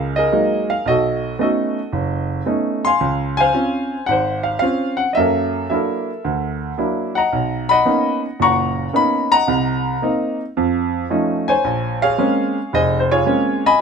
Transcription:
0.00 0.25 C#2 medium
0.00 0.17 G#4 medium
0.00 0.16 A#4 soft
0.00 0.12 D#5 medium
0.00 0.12 F5 medium
0.16 0.83 G#4 medium
0.16 0.83 A#4 medium
0.16 0.71 D#5 medium
0.32 0.70 F#3 soft
0.32 0.71 G#3 soft
0.32 0.71 A#3 soft
0.32 0.71 D#4 soft
0.70 0.86 F5 medium
0.86 1.33 B1 medium
0.86 1.41 F#4 medium
0.86 1.41 A4 soft
0.86 1.37 D#5 medium
1.39 1.78 A3 soft
1.39 1.78 B3 soft
1.39 1.78 C#4 soft
1.39 1.78 D#4 soft
1.39 2.45 F#4 soft
1.39 2.45 A4 soft
1.39 2.27 D#5 medium
1.93 2.40 F#1 medium
2.46 2.85 A3 soft
2.46 2.86 B3 soft
2.46 2.86 C#4 soft
2.46 2.86 D#4 medium
2.85 3.39 F5 medium
2.85 3.36 G#5 medium
2.85 3.40 C6 medium
3.01 3.48 C#2 medium
3.37 4.10 C5 medium
3.37 4.42 F5 medium
3.37 4.10 G#5 loud
3.53 3.93 C4 soft
3.53 3.93 C#4 soft
3.53 3.93 F4 medium
4.06 4.56 G#1 medium
4.06 4.46 F#5 medium
4.11 5.14 C5 medium
4.43 4.58 F5 medium
4.59 5.01 C4 soft
4.59 5.01 C#4 soft
4.59 5.01 F4 medium
4.59 4.99 F5 medium
4.97 5.10 F#5 medium
5.13 5.64 F#2 medium
5.13 5.64 A#3 medium
5.13 5.17 D#5 medium
5.13 5.66 E5 medium
5.19 5.72 A4 medium
5.19 5.72 A#4 medium
5.70 6.09 F#3 soft
5.70 6.09 A#3 soft
5.70 6.10 D4 soft
5.70 6.10 E4 medium
5.70 6.76 A#4 soft
5.70 6.57 E5 medium
5.74 6.76 A4 soft
6.25 6.71 D2 medium
6.78 7.17 F#3 soft
6.78 7.17 A#3 soft
6.78 7.17 D4 soft
6.78 7.17 E4 medium
7.15 7.70 D#5 soft
7.15 7.70 F#5 medium
7.15 8.20 A#5 medium
7.33 7.79 B1 medium
7.69 8.74 D#5 medium
7.69 8.41 F#5 medium
7.69 8.19 B5 loud
7.85 8.25 A#3 soft
7.85 8.25 B3 soft
7.85 8.25 C#4 soft
7.85 8.25 D#4 medium
8.40 8.87 F#1 medium
8.40 8.87 A#2 medium
8.40 9.32 F#5 medium
8.40 9.30 A#5 medium
8.40 8.91 C#6 medium
8.93 9.33 A#3 soft
8.93 9.33 B3 soft
8.93 9.33 C#4 soft
8.93 9.33 D#4 medium
8.93 9.33 B5 medium
9.32 10.36 D#5 medium
9.32 10.36 F#5 medium
9.32 10.35 A#5 medium
9.47 9.95 C2 medium
9.47 9.95 C3 medium
10.02 10.41 A#3 medium
10.02 10.41 C4 soft
10.02 10.41 D#4 medium
10.57 11.04 F2 medium
11.10 11.49 F3 medium
11.10 11.49 A3 soft
11.10 11.49 C#4 soft
11.10 11.49 D#4 medium
11.48 12.52 C5 medium
11.48 12.02 C#5 medium
11.48 12.03 G#5 medium
11.64 12.11 A#1 medium
12.02 12.73 G#4 medium
12.02 13.06 C#5 medium
12.02 12.74 F5 medium
12.18 12.57 G#3 medium
12.18 12.57 A#3 medium
12.18 12.57 C4 soft
12.18 12.57 C#4 medium
12.73 13.20 F1 medium
12.73 13.11 G#4 medium
12.73 12.98 C5 medium
12.73 12.99 D#5 medium
13.00 13.09 C5 medium
13.12 13.77 F4 medium
13.12 13.77 G#4 medium
13.12 13.66 C#5 medium
13.26 13.65 G#3 soft
13.26 13.65 A#3 medium
13.26 13.65 C4 soft
13.26 13.65 C#4 medium
13.66 13.81 D#5 medium
13.66 13.81 G#5 medium
13.66 13.81 B5 loud

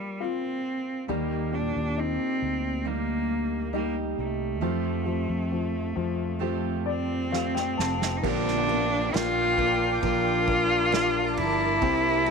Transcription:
0.00 0.23 G3 medium
0.00 1.11 A#3 soft
0.00 0.19 F4 soft
0.00 downlifter medium
0.20 1.09 C4 medium
0.20 1.06 F4 soft
1.08 1.71 D#2 medium
1.08 1.53 D#3 medium
1.08 1.53 G3 medium
1.08 4.58 G3 medium
1.08 1.53 A#3 medium
1.08 1.56 A#3 medium
1.08 1.53 D#4 medium
1.08 1.51 G4 medium
1.52 3.26 A#2 soft
1.52 2.84 A#3 soft
1.52 2.01 D4 medium
1.52 2.87 G4 soft
1.76 2.17 D#2 medium
1.98 2.88 C4 medium
1.98 3.70 D#4 soft
2.42 4.14 D2 medium
2.85 3.72 G3 soft
2.85 3.74 A#3 soft
2.85 3.74 A#3 medium
2.85 3.73 D#4 soft
2.85 3.75 G4 soft
3.73 4.61 G3 medium
3.73 3.95 A#3 medium
3.73 4.60 D#4 soft
3.73 4.62 D#4 medium
3.73 4.62 G4 medium
4.18 4.62 C2 medium
4.18 6.84 A3 medium
4.61 5.25 F2 medium
4.61 5.06 F3 medium
4.61 5.05 F3 medium
4.61 5.06 A3 medium
4.61 5.06 C4 medium
4.61 5.05 F4 medium
4.61 5.04 G4 medium
5.05 5.50 F3 soft
5.05 6.39 C4 soft
5.05 6.40 F4 soft
5.05 6.41 G4 soft
5.29 5.92 F2 medium
5.52 5.94 F3 soft
5.96 7.74 F2 medium
5.96 6.40 F3 soft
6.39 7.31 F3 soft
6.39 7.30 A3 medium
6.39 7.31 C4 medium
6.39 7.32 F4 medium
6.39 7.33 G4 medium
6.86 8.19 C4 medium
6.86 7.29 D5 medium
7.31 8.21 F3 soft
7.31 8.23 A3 medium
7.31 8.23 C4 medium
7.31 8.24 F4 medium
7.31 8.24 G4 medium
7.31 7.54 F5 medium
7.31 snare soft
7.55 7.76 G5 medium
7.55 snare soft
7.77 8.21 F1 medium
7.77 8.20 A5 medium
7.77 snare medium
8.02 snare medium
8.17 8.27 D#4 medium
8.23 9.09 A#1 loud
8.23 8.68 A#2 medium
8.23 8.69 D3 medium
8.23 8.69 F3 medium
8.23 8.68 A#3 medium
8.23 8.67 D4 medium
8.23 9.16 D4 loud
8.23 9.09 F4 medium
8.23 8.66 G4 medium
8.23 12.30 A#4 medium
8.23 10.01 G5 medium
8.23 11.78 D6 medium
8.23 kick loud
8.23 crash medium
8.23 downlifter medium
8.48 snare soft
8.67 10.00 F3 soft
8.67 10.02 A#3 soft
8.67 9.12 A#3 soft
8.67 10.02 D4 soft
8.67 10.03 G4 soft
8.67 ride medium
9.13 9.99 A#1 medium
9.13 9.56 A#3 medium
9.13 11.78 D4 medium
9.13 10.03 F4 loud
9.13 snare loud
9.13 ride medium
9.58 10.01 A#3 medium
9.58 kick medium
9.58 ride medium
10.01 11.39 A#1 medium
10.01 10.90 F3 medium
10.01 10.92 A#3 medium
10.01 10.47 A#3 medium
10.01 10.91 D4 medium
10.01 11.39 F4 loud
10.01 10.93 G4 medium
10.01 11.79 A5 medium
10.01 kick medium
10.01 ride medium
10.47 10.91 A#3 medium
10.47 kick medium
10.47 ride medium
10.91 11.81 F3 medium
10.91 11.81 A#3 medium
10.91 11.79 A#3 medium
10.91 11.82 D4 medium
10.91 11.82 G4 medium
10.91 snare loud
10.91 ride medium
11.37 11.79 G1 medium
11.37 12.30 E4 loud
11.37 ride medium
11.81 12.30 C2 loud
11.81 12.26 C3 medium
11.81 12.26 G3 medium
11.81 12.26 A#3 medium
11.81 12.30 C4 medium
11.81 12.26 E4 medium
11.81 12.30 E4 medium
11.81 12.24 G4 medium
11.81 12.30 E5 medium
11.81 12.30 C6 medium
11.81 kick loud
11.81 ride medium
12.25 12.30 E4 soft
12.25 12.30 G4 soft
12.25 ride medium

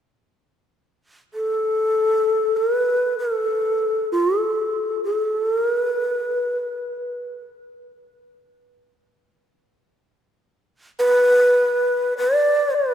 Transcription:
1.34 2.58 A4 medium
2.56 3.18 B4 medium
3.19 4.10 A4 medium
4.12 4.41 F4 medium
4.41 5.01 A4 medium
5.04 5.47 A4 medium
5.47 5.74 A#4 medium
5.74 7.41 B4 medium
10.99 12.14 B4 medium
12.18 12.76 D5 medium
12.74 12.94 B4 medium

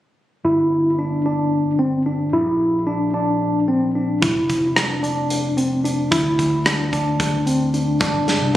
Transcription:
0.45 2.30 G1 medium
0.45 0.89 E4 medium
0.99 1.21 D4 medium
1.26 1.70 D4 medium
1.79 2.01 C4 medium
2.06 2.28 D4 medium
2.33 4.19 A#1 medium
2.33 2.78 E4 medium
2.87 3.09 D4 medium
3.14 3.59 D4 medium
3.68 3.90 C4 medium
3.95 4.18 D4 medium
4.22 6.08 F1 medium
4.22 4.67 E4 medium
4.22 kick medium
4.22 closed hi-hat medium
4.50 kick soft
4.50 closed hi-hat soft
4.76 4.99 D4 medium
4.76 cross-stick medium
4.76 closed hi-hat medium
5.03 5.48 D4 medium
5.03 closed hi-hat soft
5.30 closed hi-hat medium
5.57 5.80 C4 medium
5.57 closed hi-hat medium
5.85 6.07 D4 medium
5.85 closed hi-hat soft
6.11 7.97 D2 medium
6.11 6.56 E4 medium
6.11 kick medium
6.11 closed hi-hat medium
6.39 kick medium
6.39 closed hi-hat soft
6.66 6.88 D4 medium
6.66 cross-stick medium
6.66 closed hi-hat medium
6.93 7.37 D4 medium
6.93 kick soft
6.93 closed hi-hat soft
7.20 kick medium
7.20 closed hi-hat medium
7.46 7.69 C4 medium
7.46 closed hi-hat soft
7.74 7.96 D4 medium
7.74 closed hi-hat soft
8.00 8.33 G1 medium
8.00 8.45 D4 medium
8.00 kick loud
8.00 closed hi-hat medium
8.28 snare soft
8.28 closed hi-hat soft
8.41 8.57 C2 medium

